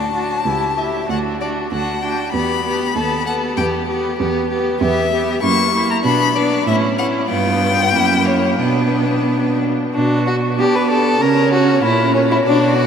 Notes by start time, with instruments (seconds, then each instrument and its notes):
Already playing: cello D2, viola D4, violin F#4 A5
0.13 viola D4, violin F#4
0.45 cello C#2, viola E4, violin G4
0.77 viola E4, violin G4 E5
1.09 cello D2, viola D4, violin F#4 F#5
1.40 viola D4, violin F#4 D5
1.72 cello D2, viola D4, violin F#4 F#5
2.02 viola D4, violin F#4 G5
2.34 cello E2, viola B3, violin G4 B5
2.65 viola B3, violin G4
2.96 cello D#2, viola B3, violin A4
3.26 viola B3, violin A4 F#5
3.57 cello E2, viola B3, violin G4 G5
3.88 viola B3, violin G4
4.19 cello E2, viola B3, violin G4
4.50 viola B3, violin G4
4.81 cello E2, viola B3, violin G4 E5
5.12 viola B3, violin G4
5.43 cello F#2, viola A#3, violin E4 C#6
5.73 viola A#3, violin E4
5.91 violin A#5
6.04 cello B2, viola B3, violin D4 B5
6.35 viola B3, violin D4 D5
6.67 cello A2, viola C#4, violin E4 E5
6.98 viola C#4, violin E4 F#5
7.29 cello G2, viola B3, violin F4 G5
7.94 cello F#2, viola A#3, violin E4
8.27 violin C#5
8.60 cello B2, viola B3, violin D4 B4
9.94 cello B2, violin D4, viola F#4
10.27 violin F#4
10.58 cello B3, viola D4, violin G4 D5
10.75 violin B4
10.90 violin A4
11.21 cello C#3, viola C#4, violin A#4 C#5
11.53 violin F#4
11.83 cello A#2, violin E4
12.14 violin C#4
12.31 violin E4
12.44 cello B2, violin D4 D5, viola F#4
12.77 violin F#4